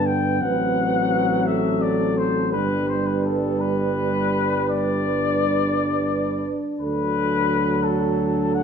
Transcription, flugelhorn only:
0.06 0.43 G5 medium
0.41 1.48 F#5 medium
1.47 1.83 E5 medium
1.82 2.19 D5 medium
2.18 2.52 C5 medium
2.53 2.88 B4 medium
2.89 3.08 C5 medium
3.07 3.24 B4 medium
3.24 3.62 A4 medium
3.60 4.69 B4 medium
4.70 6.50 D5 medium
6.81 7.85 B4 medium
7.83 8.55 A4 medium
8.54 8.63 F#5 medium

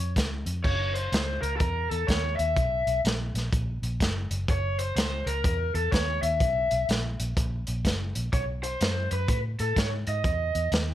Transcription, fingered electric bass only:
0.00 0.14 F2 medium
0.16 0.43 C#2 medium
0.46 0.62 F2 medium
0.65 1.07 F#1 medium
1.12 1.39 C#2 medium
1.42 1.58 C#2 medium
1.60 1.87 E2 medium
1.91 2.07 E2 medium
2.09 2.35 D#2 medium
2.39 2.54 D#2 medium
2.56 2.83 B1 medium
2.87 3.02 B1 medium
3.04 3.31 A#1 loud
3.34 3.50 A#1 medium
3.53 3.79 A#1 medium
3.82 3.98 A#1 medium
4.01 4.27 F#1 medium
4.31 4.46 F#1 medium
4.49 4.91 F#1 medium
4.96 5.23 C#2 medium
5.26 5.42 C#2 medium
5.45 5.71 E2 medium
5.74 5.90 E2 medium
5.92 6.19 D#2 medium
6.22 6.38 D#2 medium
6.41 6.67 B1 medium
6.72 6.87 B1 medium
6.89 7.15 A#1 medium
7.20 7.35 A#1 medium
7.37 7.64 A#1 medium
7.68 7.83 A#1 medium
7.85 8.11 F#1 medium
8.16 8.31 A#1 medium
8.33 8.75 B1 medium
8.81 9.08 F#2 medium
9.11 9.27 F#2 medium
9.28 9.55 A2 medium
9.60 9.75 A2 medium
9.77 10.03 G#2 medium
10.07 10.23 G#2 medium
10.24 10.51 E2 medium
10.55 10.70 E2 medium
10.72 10.94 D#2 medium

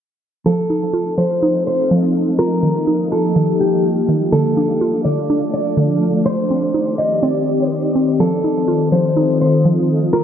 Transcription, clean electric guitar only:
0.46 1.14 A4 loud
1.18 1.64 C5 medium
1.67 1.90 C5 medium
2.39 3.08 A#4 loud
3.12 3.57 A4 medium
3.60 3.83 G4 medium
4.32 5.01 A4 medium
5.05 5.50 D5 medium
5.54 5.77 D5 medium
6.26 6.95 C5 loud
6.98 7.21 D#5 medium
7.23 7.69 D5 medium
8.20 8.89 A4 loud
8.92 9.38 C5 medium
9.41 9.64 C5 medium
10.13 10.24 A#4 loud

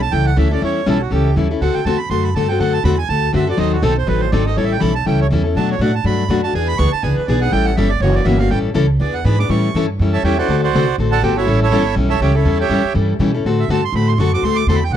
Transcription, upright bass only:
0.00 0.12 B1 medium
0.13 0.37 C#2 medium
0.37 0.61 D2 medium
0.62 0.86 E2 medium
0.87 1.11 B1 medium
1.12 1.35 C#2 medium
1.36 1.60 D#2 medium
1.61 1.74 D2 medium
1.76 muted upright bass stroke soft
1.85 2.09 E2 medium
2.10 2.34 F#2 medium
2.34 2.59 G2 medium
2.59 2.83 F#2 medium
2.84 3.08 E2 loud
3.09 3.33 D2 medium
3.34 3.57 F#2 medium
3.58 3.82 D#2 medium
3.82 4.07 B1 medium
4.08 4.32 A1 medium
4.32 4.56 G#1 medium
4.58 4.81 A1 medium
4.82 5.06 B1 medium
5.06 5.30 C#2 medium
5.30 5.55 E2 medium
5.55 5.78 B2 medium
5.79 6.03 A2 medium
6.04 6.28 G2 medium
6.28 6.53 F#2 medium
6.53 6.78 E2 medium
6.79 6.92 D2 medium
6.93 muted upright bass stroke soft
7.03 7.16 C#2 medium
7.18 muted upright bass stroke soft
7.28 7.52 B1 medium
7.53 7.76 A1 medium
7.77 8.00 G1 medium
8.00 8.24 F#1 medium
8.25 8.50 G1 medium
8.50 8.74 A1 medium
8.75 8.99 C#2 medium
9.00 9.24 E2 medium
9.25 9.49 G#2 loud
9.49 9.74 A2 medium
9.74 9.98 G2 medium
9.99 10.23 F#2 medium
10.23 10.48 E2 medium
10.48 10.72 D2 medium
10.73 10.97 C2 medium
10.98 11.21 A1 medium
11.22 11.46 G1 medium
11.46 11.71 A1 medium
11.71 11.96 G1 medium
11.96 12.20 B1 medium
12.20 12.44 C#2 medium
12.45 12.69 E2 medium
12.70 12.83 F#2 medium
12.84 muted upright bass stroke soft
12.95 13.19 G2 medium
13.19 13.44 B2 medium
13.45 13.68 A2 medium
13.68 13.92 G2 medium
13.92 14.17 A2 medium
14.18 14.41 F#2 medium
14.42 14.66 D2 medium
14.67 14.90 E2 medium
14.90 14.97 C2 medium

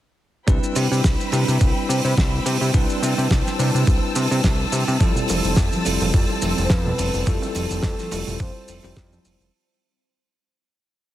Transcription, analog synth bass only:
0.48 0.60 C2 loud
0.76 0.88 C3 loud
0.91 1.01 C3 medium
1.04 1.16 C2 medium
1.33 1.44 C3 loud
1.48 1.58 C3 medium
1.61 1.73 C2 medium
1.89 2.01 C3 medium
2.05 2.14 C3 loud
2.17 2.40 C2 loud
2.46 2.58 C3 loud
2.61 2.71 C3 medium
2.74 2.86 C2 loud
3.03 3.14 C3 loud
3.18 3.28 C3 medium
3.31 3.43 C2 medium
3.59 3.71 C3 loud
3.75 3.84 C3 medium
3.87 3.99 C2 medium
4.16 4.28 C3 medium
4.31 4.41 C3 loud
4.44 4.66 C2 loud
4.72 4.84 C3 loud
4.88 4.98 C3 medium
5.00 5.12 F2 loud
5.29 5.41 F1 loud
5.45 5.54 F1 medium
5.57 5.69 F2 medium
5.86 5.97 F1 loud
6.01 6.11 F1 medium
6.14 6.26 F2 medium
6.42 6.54 F1 loud
6.58 6.67 F1 loud
6.70 6.93 F2 loud
6.99 7.11 F1 loud
7.14 7.24 F1 medium
7.27 7.39 F2 loud
7.55 7.67 F1 loud
7.71 7.81 F1 medium
7.83 7.95 F2 medium
8.12 8.24 F1 loud
8.27 8.37 F1 medium
8.40 8.52 F2 medium
8.68 8.80 F1 medium
8.84 8.94 F1 loud
8.97 9.19 F2 loud
9.25 9.37 F1 loud
9.40 9.50 F1 medium

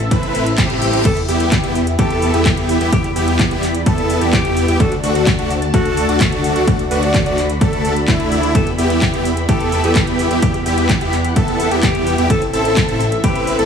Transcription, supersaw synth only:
0.11 0.44 C4 medium
0.11 0.44 E4 medium
0.11 0.44 B4 loud
0.58 1.02 C4 loud
0.58 1.02 E4 medium
0.58 1.02 G4 loud
1.05 1.17 B3 medium
1.05 1.17 E4 medium
1.28 1.61 B3 medium
1.28 1.61 E4 medium
1.28 1.61 G4 loud
1.64 1.76 B3 medium
1.64 1.76 E4 medium
1.64 1.76 G4 loud
1.99 2.31 B3 medium
1.99 2.31 E4 medium
1.99 2.31 A4 loud
2.34 2.78 B3 medium
2.34 2.78 E4 medium
2.34 2.78 G4 medium
2.81 2.91 B3 medium
2.81 2.91 E4 medium
2.81 2.91 G4 loud
2.93 3.05 B3 medium
2.93 3.05 E4 medium
3.16 3.48 B3 medium
3.16 3.48 E4 medium
3.16 3.48 G4 loud
3.51 3.63 B3 loud
3.51 3.63 E4 medium
3.51 3.63 G4 loud
3.86 4.19 B3 medium
3.86 4.19 E4 medium
3.86 4.19 A4 loud
4.21 4.66 B3 medium
4.21 4.66 E4 medium
4.21 4.66 G4 medium
4.68 4.78 B3 medium
4.68 4.78 E4 medium
4.68 4.78 G4 loud
4.80 4.92 D4 medium
5.03 5.36 A3 medium
5.03 5.36 D4 medium
5.03 5.36 F#4 loud
5.39 5.51 A3 medium
5.39 5.51 D4 medium
5.39 5.51 F#4 loud
5.74 6.06 A3 medium
5.74 6.06 D4 medium
5.74 6.06 A4 loud
6.09 6.53 A3 medium
6.09 6.53 D4 medium
6.09 6.53 F#4 medium
6.56 6.66 A3 medium
6.56 6.66 D4 medium
6.56 6.66 F#4 loud
6.67 6.80 A3 medium
6.67 6.80 D4 medium
6.67 6.80 F#4 medium
6.91 7.23 A3 medium
6.91 7.23 D4 medium
6.91 7.23 F#4 loud
7.26 7.38 A3 medium
7.26 7.38 D4 medium
7.26 7.38 F#4 loud
7.61 7.94 A3 medium
7.61 7.94 D4 medium
7.61 7.94 A4 loud
8.08 8.52 A3 loud
8.08 8.52 D4 medium
8.08 8.52 E4 loud
8.55 8.67 B3 medium
8.55 8.67 E4 medium
8.78 9.11 B3 medium
8.78 9.11 E4 medium
8.78 9.11 G4 loud
9.14 9.26 B3 medium
9.14 9.26 E4 medium
9.14 9.26 G4 loud
9.49 9.81 B3 loud
9.49 9.81 E4 medium
9.49 9.81 A4 loud
9.84 10.28 B3 medium
9.84 10.28 E4 medium
9.84 10.28 G4 medium
10.31 10.41 B3 medium
10.31 10.41 E4 medium
10.31 10.41 G4 medium
10.43 10.55 B3 medium
10.43 10.55 E4 medium
10.43 10.55 G4 medium
10.66 10.98 B3 medium
10.66 10.98 E4 medium
10.66 10.98 G4 loud
11.01 11.13 B3 medium
11.01 11.13 E4 medium
11.01 11.13 G4 loud
11.36 11.69 B3 medium
11.36 11.69 E4 medium
11.36 11.69 A4 loud
11.71 12.15 B3 medium
11.71 12.15 E4 medium
11.71 12.15 G4 medium
12.18 12.28 B3 medium
12.18 12.28 E4 medium
12.18 12.28 G4 loud
12.30 12.42 C4 medium
12.30 12.42 E4 medium
12.30 12.42 A4 medium
12.53 12.86 C4 medium
12.53 12.86 E4 medium
12.53 12.86 A4 loud
12.89 13.01 C4 medium
12.89 13.01 E4 medium
12.89 13.01 A4 loud
13.24 13.56 C4 medium
13.24 13.56 E4 medium
13.24 13.56 B4 loud
13.59 13.65 C4 medium
13.59 13.65 E4 medium
13.59 13.65 A4 medium

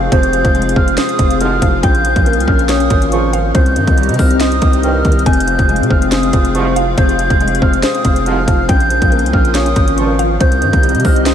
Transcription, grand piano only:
0.00 0.12 C3 loud
0.00 0.33 F3 medium
0.00 0.55 G#3 medium
0.00 0.77 C4 medium
0.00 0.33 C5 loud
0.12 1.19 C3 loud
0.33 1.40 F3 medium
0.55 1.62 G#3 medium
0.77 1.18 C4 medium
0.98 1.83 C5 loud
1.19 1.83 C4 medium
1.62 1.83 F3 medium
1.83 2.91 C#3 loud
2.05 3.12 F3 medium
2.26 3.33 A#3 medium
2.48 2.89 C#4 medium
2.69 3.55 C#5 loud
2.90 3.55 C#4 medium
3.33 3.55 F3 medium
3.55 4.62 C3 medium
3.76 4.83 D#3 medium
3.97 5.05 G3 medium
4.19 4.60 C4 medium
4.41 5.26 C5 loud
4.62 5.26 C4 loud
5.05 5.26 D#3 medium
5.26 6.33 C3 medium
5.47 6.54 F3 medium
5.69 6.76 G#3 medium
5.90 6.32 C4 medium
6.12 7.19 C5 medium
6.33 7.40 C4 medium
6.77 7.17 F3 medium
6.98 8.05 C3 loud
7.19 8.26 F3 medium
7.40 8.48 G#3 medium
7.62 8.03 C4 medium
7.84 8.69 C5 loud
8.05 8.69 C4 medium
8.48 8.69 F3 medium
8.69 9.76 C#3 loud
8.91 9.98 F3 medium
9.12 10.19 A#3 medium
9.33 9.74 C#4 medium
9.55 10.41 C#5 loud
9.76 10.40 C#4 medium
10.19 10.40 F3 medium
10.40 11.35 C3 medium
10.62 11.35 D#3 medium
10.83 11.35 G3 medium
11.05 11.35 C4 medium
11.26 11.35 C5 loud

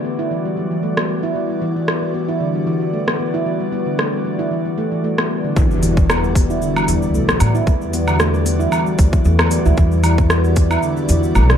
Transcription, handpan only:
0.05 0.17 B3 medium
0.19 0.30 E4 medium
0.31 0.44 E3 medium
0.45 0.52 G3 medium
0.57 0.70 F#3 medium
0.71 0.78 E3 medium
0.83 0.91 A3 medium
0.97 1.08 B3 medium
1.09 1.22 B3 medium
1.23 1.30 E4 medium
1.36 1.49 E3 medium
1.50 1.57 G3 medium
1.62 1.75 E3 medium
1.76 1.87 E3 medium
1.88 2.02 B3 medium
2.03 2.14 G3 medium
2.14 2.28 B3 medium
2.28 2.40 E4 medium
2.40 2.54 D3 medium
2.55 2.62 G3 medium
2.67 2.80 E3 medium
2.81 2.92 E3 medium
2.93 3.02 A3 medium
3.08 3.18 B3 medium
3.19 3.33 B3 medium
3.34 3.45 E4 loud
3.46 3.60 E3 medium
3.60 3.67 G3 medium
3.72 3.86 B3 medium
3.86 3.97 D3 medium
3.98 4.07 A3 medium
4.13 4.24 G3 medium
4.24 4.38 B3 medium
4.39 4.51 E4 medium
4.51 4.65 E3 medium
4.65 4.72 G3 medium
4.78 4.86 A3 medium
4.92 5.03 E3 medium
5.04 5.18 A3 medium
5.18 5.29 B3 medium
5.30 5.43 B3 medium
5.44 5.55 D3 medium
5.56 5.70 E3 medium
5.71 5.78 G3 medium
5.83 5.96 E3 loud
5.97 6.08 E3 medium
6.09 6.23 B3 medium
6.24 6.35 G3 medium
6.36 6.49 B3 medium
6.50 6.61 E4 medium
6.62 6.76 D3 medium
6.76 6.83 G3 medium
6.88 7.01 E3 loud
7.03 7.13 E3 medium
7.14 7.23 A3 medium
7.29 7.40 B3 medium
7.41 7.55 B3 medium
7.55 7.66 E4 loud
7.67 7.81 E3 medium
7.81 7.88 G3 medium
7.94 8.07 B3 loud
8.08 8.19 D3 medium
8.20 8.28 A3 medium
8.34 8.45 G3 medium
8.45 8.59 B3 medium
8.59 8.71 E4 loud
8.72 8.86 E3 medium
8.86 8.93 G3 medium
8.98 9.12 F#3 medium
9.13 9.20 E3 medium
9.25 9.33 A3 medium
9.39 9.50 B3 medium
9.51 9.64 B3 medium
9.65 9.72 E4 loud
9.77 9.91 E3 medium
9.92 9.99 G3 medium
10.04 10.17 E3 loud
10.18 10.29 E3 medium
10.30 10.44 B3 medium
10.44 10.56 G3 medium
10.56 10.70 B3 medium
10.71 10.82 E4 loud
10.83 10.96 D3 medium
10.96 11.04 G3 medium
11.09 11.22 E3 loud
11.23 11.34 E3 medium
11.35 11.43 A3 medium
11.49 11.58 B3 medium

